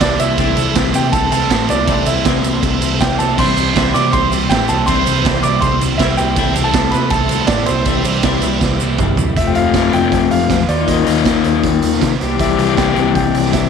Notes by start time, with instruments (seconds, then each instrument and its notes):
Already playing: overdriven electric guitar C3, analog synth pad G4 C5 E5 C6
0.01 picked electric bass C2, overdriven electric guitar E3 G3 C4 E4, trumpet D4, upright piano D5, kick, snare, ride, shaker
0.19 picked electric bass C2, overdriven electric guitar G3 C4 E4, trumpet E4, upright piano E5, ride, shaker
0.38 picked electric bass C2, overdriven electric guitar C3 E3 A3 C4 E4, analog synth pad A4 C6, kick, ride, shaker
0.57 picked electric bass C2, overdriven electric guitar A3 C4 E4, ride, shaker
0.75 picked electric bass C2, overdriven electric guitar C3 E3 A3 C4 E4, kick, snare, ride, shaker
0.94 picked electric bass C3, trumpet G4, upright piano G5, ride, shaker
1.12 picked electric bass C2, trumpet A4, upright piano A5, kick, ride, shaker
1.32 picked electric bass C2, overdriven electric guitar A3 C4 E4, trumpet A4, upright piano A5, ride, shaker
1.50 picked electric bass A2, overdriven electric guitar E3 A3 C4 E4, kick, snare, ride, shaker
1.68 picked electric bass C2, overdriven electric guitar A3 C4 E4, trumpet D4, upright piano D5, ride, shaker
1.87 picked electric bass C2, overdriven electric guitar C3 E3 A3 C4 E4, kick, ride, shaker
2.06 picked electric bass C2, overdriven electric guitar A3 C4 E4, trumpet E4, upright piano E5, ride, shaker
2.16 shaker
2.25 picked electric bass C2, overdriven electric guitar C3 E3 A3 C4 E4, kick, snare, ride, shaker
2.43 picked electric bass C2, ride, shaker
2.54 shaker
2.63 picked electric bass C2, kick, ride, shaker
2.81 picked electric bass C2, overdriven electric guitar A3 C4 E4, ride, shaker
2.99 picked electric bass C2, overdriven electric guitar E3 A3 C4 E4, trumpet G4, upright piano G5, kick, snare, ride, shaker
3.19 picked electric bass C2, overdriven electric guitar A3 C4 E4, trumpet A4, upright piano A5, ride, shaker
3.37 picked electric bass C2, overdriven electric guitar C3 E3 G3 C4 E4, analog synth pad G4, trumpet C5, upright piano C6, kick, crash, shaker
3.56 picked electric bass C2, overdriven electric guitar G3 C4 E4, ride, shaker
3.75 picked electric bass C2, overdriven electric guitar C3 E3 G3 C4 E4, kick, snare, ride, shaker
3.93 picked electric bass C3, clean electric guitar C4 E4, trumpet D5, upright piano D6, ride, shaker
3.98 clean electric guitar G3
4.12 picked electric bass C2, trumpet C5, upright piano C6, kick, ride, shaker
4.31 picked electric bass C2, overdriven electric guitar G3 C4 E4, ride, shaker
4.40 shaker
4.49 picked electric bass A2, overdriven electric guitar E3 G3 C4 E4, trumpet G4, upright piano G5, kick, snare, ride, shaker
4.68 picked electric bass C2, overdriven electric guitar G3 C4 E4, trumpet A4, upright piano A5, ride, shaker
4.86 picked electric bass C2, overdriven electric guitar C3 E3 G3 C4 E4, trumpet C5, upright piano C6, kick, ride, shaker
5.04 picked electric bass C2, overdriven electric guitar G3 C4 E4, ride, shaker
5.23 picked electric bass C2, overdriven electric guitar C3 E3 G3 C4 E4, kick, snare, ride, shaker
5.43 picked electric bass C2, clean electric guitar C4 E4, trumpet D5, upright piano D6, ride, shaker
5.47 clean electric guitar G3
5.61 picked electric bass C2, trumpet C5, upright piano C6, kick, ride, shaker
5.80 picked electric bass C2, overdriven electric guitar G3 C4 E4, ride, shaker
5.98 picked electric bass C2, overdriven electric guitar E3 G3 C4 E4, trumpet E4, upright piano E5, kick, snare, ride, shaker
6.17 picked electric bass C2, overdriven electric guitar G3 C4 E4, trumpet G4, upright piano G5, ride, shaker
6.36 picked electric bass C2, overdriven electric guitar C3 E3 A3 C4 E4, analog synth pad A4 C5 E5, kick, ride, shaker
6.55 picked electric bass C2, overdriven electric guitar A3 C4 E4, ride, shaker
6.64 trumpet A4, upright piano A5
6.74 picked electric bass C2, overdriven electric guitar C3 E3 A3 C4 E4, kick, snare, ride, shaker
6.91 picked electric bass C3, clean electric guitar E4, trumpet B4, upright piano B5, ride, shaker
6.96 clean electric guitar A3 C4
7.10 picked electric bass C2, trumpet A4, upright piano A5, kick, ride, shaker
7.29 picked electric bass C2, overdriven electric guitar A3 C4 E4, ride, shaker
7.47 picked electric bass A2, overdriven electric guitar E3 A3 C4 E4, trumpet D4, upright piano D5, kick, snare, ride, shaker
7.66 picked electric bass C2, overdriven electric guitar A3 C4 E4, trumpet C4, upright piano C5, ride, shaker
7.85 picked electric bass C2, overdriven electric guitar C3 E3 G3 C4 E4, analog synth pad G4 D5 C6, kick, ride, shaker
7.90 clean electric guitar D4
8.04 picked electric bass C2, overdriven electric guitar G3 C4 E4, ride, shaker
8.09 clean electric guitar D4
8.23 picked electric bass C2, overdriven electric guitar C3 E3 G3 C4 E4, kick, snare, ride, shaker
8.27 clean electric guitar D4
8.42 picked electric bass C2, clean electric guitar D4 E4, ride, shaker
8.46 clean electric guitar G3
8.61 picked electric bass C2, kick, snare, shaker
8.80 picked electric bass C2, overdriven electric guitar G3 C4 E4, shaker
8.98 picked electric bass C2, overdriven electric guitar E3 G3 C4 E4, clean electric guitar D4, kick, mid tom, shaker
9.17 picked electric bass C2, overdriven electric guitar G3 C4 E4, clean electric guitar D4, floor tom, shaker
9.36 picked electric bass F1, overdriven electric guitar F2 C3 F3 A3 C4 F4, upright piano E5, kick, closed hi-hat
9.47 upright piano G5
9.55 picked electric bass F1, upright piano F5, closed hi-hat
9.74 picked electric bass F1, kick, snare, closed hi-hat
9.93 picked electric bass F1, upright piano G5, closed hi-hat
10.12 picked electric bass F1, kick, closed hi-hat
10.31 picked electric bass F1, upright piano F5, closed hi-hat
10.50 picked electric bass E2, kick, snare, closed hi-hat
10.67 picked electric bass D#2, overdriven electric guitar D#3 A#3 D#4 F4, upright piano D5, closed hi-hat
10.87 picked electric bass D#2, upright piano D#5, kick, closed hi-hat
11.07 picked electric bass D#2, closed hi-hat
11.25 picked electric bass D#2, kick, snare, closed hi-hat
11.44 picked electric bass D#2, closed hi-hat
11.63 picked electric bass D#2, kick, closed hi-hat
11.82 picked electric bass D#2, closed hi-hat
11.93 snare
12.01 picked electric bass C3, kick, snare, closed hi-hat
12.20 picked electric bass C2, overdriven electric guitar C3 E3 G3 C4 G4, closed hi-hat
12.39 picked electric bass C2, upright piano E5, kick, closed hi-hat
12.58 picked electric bass C2, closed hi-hat
12.77 picked electric bass C2, upright piano G5, kick, snare, closed hi-hat
12.96 picked electric bass C2, closed hi-hat
13.15 picked electric bass C2, upright piano G5, kick, closed hi-hat
13.34 picked electric bass C2, closed hi-hat
13.45 snare
13.53 picked electric bass C2, upright piano E5, kick, snare, closed hi-hat